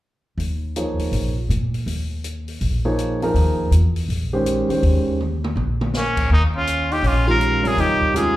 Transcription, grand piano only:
0.76 1.32 F3 soft
0.76 1.32 A#3 soft
0.76 1.32 D#4 soft
0.76 1.32 G#4 soft
0.76 1.32 C#5 soft
2.85 3.19 F3 medium
2.85 3.19 A#3 soft
2.85 3.19 D#4 soft
2.85 3.19 G#4 soft
2.85 3.19 C#5 medium
3.22 3.69 F3 medium
3.22 3.70 A#3 soft
3.22 3.70 D#4 medium
3.22 3.70 G#4 soft
3.22 3.70 A#4 medium
4.33 4.67 D#3 soft
4.33 4.67 G#3 soft
4.33 4.67 C#4 soft
4.33 4.67 G4 medium
4.33 4.67 C5 medium
4.69 5.17 D#3 medium
4.69 5.17 G#3 soft
4.69 5.17 C#4 soft
4.69 5.17 G4 soft
4.69 5.17 C5 medium
7.27 7.62 D#3 soft
7.27 7.62 G#3 soft
7.27 7.62 C#4 soft
7.27 7.62 G4 soft
7.27 7.62 A#4 soft
7.63 8.12 C3 medium
7.63 8.12 G3 medium
7.63 8.12 F4 soft
7.63 8.12 A#4 medium
7.63 8.12 C#5 medium
8.14 8.36 D#3 soft
8.14 8.36 G#3 soft
8.14 8.36 C#4 soft
8.14 8.36 G4 soft
8.14 8.36 A#4 soft

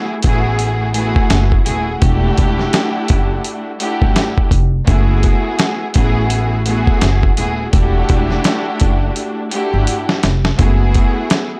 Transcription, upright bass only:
0.25 1.13 A1 medium
1.31 1.58 F#1 loud
1.67 1.94 D#1 medium
2.02 2.30 E1 loud
2.39 2.66 E1 medium
3.10 3.37 F#1 medium
4.02 4.13 G1 medium
4.51 4.79 F1 medium
4.88 5.32 F#1 loud
5.96 6.84 A1 medium
7.02 7.30 F#1 loud
7.38 7.66 D#1 medium
7.74 8.01 E1 loud
8.10 8.37 E1 medium
8.82 9.09 F#1 medium
9.74 9.85 G1 medium
10.24 10.51 F1 medium
10.59 11.03 F#1 loud

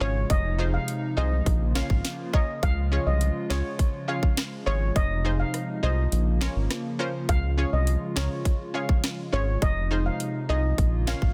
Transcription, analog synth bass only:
0.01 0.25 G#1 medium
0.30 0.78 F1 loud
1.17 1.41 C2 medium
1.46 1.82 A#1 loud
1.90 2.02 G#1 loud
2.63 2.99 C#2 loud
3.06 3.31 C2 medium
3.50 3.62 C#2 medium
4.67 4.91 G#1 loud
4.96 5.44 F1 loud
5.83 6.07 C2 medium
6.12 6.48 A#1 loud
6.56 6.68 G#1 medium
7.29 7.65 C#2 loud
7.73 7.97 C2 medium
8.16 8.28 C#2 medium
9.33 9.57 G#1 loud
9.62 10.10 F1 loud
10.49 10.73 C2 medium
10.78 11.14 A#1 loud
11.22 11.34 G#1 loud

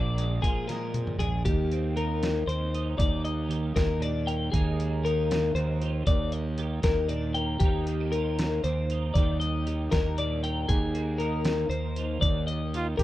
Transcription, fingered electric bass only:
0.00 0.39 A#1 loud
0.43 1.15 A#2 medium
1.19 1.42 A#1 medium
1.46 2.44 D#2 loud
2.47 2.95 D#2 medium
2.99 3.72 D#2 loud
3.76 4.49 D#2 medium
4.54 5.52 D#2 loud
5.55 6.02 D#2 loud
6.07 6.80 D#2 loud
6.84 7.57 D#2 medium
7.61 8.59 D#2 medium
8.64 9.11 D#2 medium
9.15 9.88 D#2 loud
9.93 10.65 D#2 medium
10.69 11.67 D#2 loud
11.69 12.17 D#2 medium
12.22 12.95 D#2 medium
12.99 13.03 D#2 medium

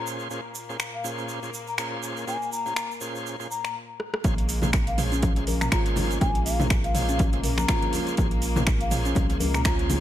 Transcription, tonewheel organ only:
0.00 0.28 A#2 medium
0.00 0.28 C#4 medium
0.00 0.28 F4 medium
0.00 0.28 G#4 medium
0.00 0.28 C5 loud
0.31 0.41 A#2 medium
0.31 0.41 C#4 medium
0.31 0.41 F4 medium
0.31 0.41 G#4 medium
0.31 0.41 C5 loud
0.69 0.77 A#2 medium
0.69 0.77 C#4 medium
0.69 0.77 F4 medium
0.69 0.77 G#4 medium
0.69 0.77 C5 medium
1.04 1.40 A#2 medium
1.04 1.40 C#4 medium
1.04 1.40 F4 medium
1.04 1.40 G#4 medium
1.04 1.40 C5 loud
1.42 1.51 A#2 medium
1.42 1.51 C#4 medium
1.42 1.51 F4 medium
1.42 1.51 G#4 medium
1.42 1.51 C5 medium
1.78 2.25 A#2 medium
1.78 2.25 C#4 medium
1.78 2.25 F4 medium
1.78 2.25 G#4 medium
1.78 2.25 C5 loud
2.27 2.37 A#2 medium
2.27 2.37 C#4 medium
2.27 2.37 F4 medium
2.27 2.38 G#4 medium
2.27 2.38 C5 loud
2.66 2.74 A#2 medium
2.66 2.74 C#4 medium
2.66 2.74 F4 medium
2.66 2.74 G#4 medium
2.66 2.74 C5 medium
3.01 3.36 A#2 medium
3.01 3.36 C#4 medium
3.01 3.36 F4 medium
3.01 3.36 G#4 medium
3.01 3.36 C5 loud
3.40 3.48 A#2 medium
3.40 3.48 C#4 medium
3.40 3.48 F4 medium
3.40 3.47 G#4 medium
3.40 3.48 C5 medium
4.24 4.34 C#4 loud
4.24 4.34 F4 medium
4.24 4.34 G#4 medium
4.24 4.34 C5 loud
4.63 4.71 C#4 medium
4.63 4.71 F4 medium
4.63 4.71 G#4 medium
4.63 4.71 C5 medium
4.98 5.33 C#4 medium
4.98 5.33 F4 medium
4.98 5.33 G#4 medium
4.98 5.33 C5 loud
5.37 5.44 C#4 medium
5.37 5.44 F4 medium
5.37 5.44 G#4 medium
5.37 5.44 C5 medium
5.72 6.19 C#4 medium
5.72 6.19 F4 medium
5.72 6.19 G#4 medium
5.72 6.19 C5 loud
6.21 6.31 C#4 loud
6.21 6.31 F4 medium
6.21 6.31 G#4 medium
6.21 6.31 C5 loud
6.60 6.67 C#4 medium
6.60 6.67 F4 medium
6.60 6.67 G#4 medium
6.60 6.67 C5 medium
6.95 7.30 C#4 medium
6.95 7.30 F4 medium
6.95 7.30 G#4 medium
6.95 7.30 C5 loud
7.33 7.41 C#4 medium
7.33 7.41 F4 medium
7.33 7.41 G#4 medium
7.33 7.41 C5 medium
7.68 8.15 C#4 loud
7.68 8.15 F4 medium
7.68 8.15 G#4 medium
7.68 8.15 C5 loud
8.18 8.28 C#4 loud
8.18 8.28 F4 medium
8.18 8.28 G#4 medium
8.18 8.28 C5 loud
8.56 8.64 C#4 medium
8.56 8.64 F4 medium
8.56 8.64 G#4 medium
8.56 8.64 C5 medium
8.91 9.27 C#4 loud
8.91 9.27 F4 medium
8.91 9.27 G#4 medium
8.91 9.27 C5 loud
9.30 9.38 C#4 medium
9.30 9.38 F4 medium
9.30 9.38 G#4 medium
9.30 9.38 C5 medium
9.65 10.00 C#4 loud
9.65 10.00 F4 medium
9.65 10.00 G#4 medium
9.65 10.00 C5 loud

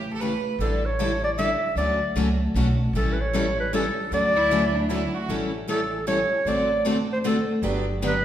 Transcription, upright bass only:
0.00 0.36 A1 medium
0.59 1.53 A1 medium
1.75 2.07 D2 medium
2.15 2.49 C#2 medium
2.54 2.88 B1 medium
2.93 3.87 A1 medium
4.11 5.05 D2 medium
5.29 6.22 A1 medium
6.45 7.39 A1 medium
7.62 8.25 G1 medium

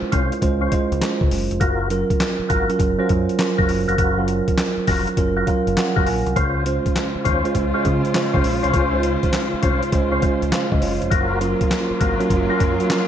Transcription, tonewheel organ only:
0.12 0.33 C#4 medium
0.12 0.33 F4 medium
0.12 0.34 C5 medium
0.61 0.74 C#4 medium
0.61 0.75 F4 medium
0.61 0.75 C5 medium
1.60 1.89 F4 medium
1.60 1.89 F#4 medium
1.60 1.89 A#4 loud
2.49 2.71 F4 medium
2.49 2.71 F#4 medium
2.49 2.71 A#4 medium
2.99 3.12 F4 medium
2.99 3.12 F#4 medium
2.99 3.12 A#4 medium
3.58 3.71 F4 medium
3.58 3.72 F#4 medium
3.58 3.72 A#4 medium
3.88 3.97 F4 medium
3.88 3.97 F#4 medium
3.88 3.97 A#4 medium
3.98 4.26 F4 medium
3.98 4.26 F#4 medium
3.98 4.27 A#4 loud
4.87 5.09 F4 medium
4.87 5.09 F#4 medium
4.87 5.09 A#4 medium
5.37 5.50 F4 medium
5.37 5.50 F#4 medium
5.37 5.50 A#4 medium
5.96 6.09 F4 medium
5.96 6.09 F#4 medium
5.96 6.10 A#4 medium
6.36 6.64 C#4 medium
6.36 6.64 F4 medium
6.36 6.64 C5 medium
7.25 7.46 C#4 medium
7.25 7.46 F4 medium
7.25 7.46 C5 medium
7.74 7.87 C#4 medium
7.74 7.87 F4 medium
7.74 7.88 C5 medium
8.33 8.47 C#4 medium
8.33 8.47 F4 medium
8.33 8.47 C5 medium
8.63 8.72 C#4 medium
8.63 8.72 F4 medium
8.63 8.72 C5 medium
8.73 9.01 C#4 medium
8.73 9.02 F4 medium
8.73 9.02 C5 medium
9.62 9.84 C#4 medium
9.62 9.84 F4 medium
9.62 9.84 C5 medium
10.12 10.25 C#4 medium
10.12 10.25 F4 medium
10.12 10.25 C5 medium
11.11 11.39 F4 medium
11.11 11.39 F#4 medium
11.11 11.39 A#4 medium
12.00 12.22 F4 medium
12.00 12.22 F#4 medium
12.00 12.22 A#4 medium
12.49 12.63 F4 medium
12.49 12.63 F#4 medium
12.49 12.63 A#4 medium

